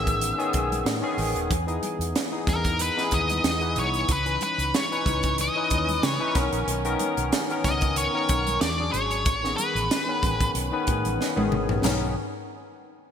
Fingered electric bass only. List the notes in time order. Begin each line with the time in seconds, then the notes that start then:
Already playing: A1
0.54 B1
0.85 A2
1.17 A1
1.35 D#1
1.51 E2
1.99 E2
2.47 E2
3.12 D#2
3.44 E2
3.76 C2
4.09 C#2
4.58 C#2
5.06 C#2
5.71 D#2
6.03 C#3
6.35 B1
6.53 A#1
6.68 B1
7.17 B1
7.64 C#2
8.29 B1
8.61 E2
8.94 G#1
9.26 A1
9.75 A1
10.22 A1
10.55 B1
10.88 A2
11.05 A1
11.37 A1
11.51 G#1
11.69 A#1
11.84 B1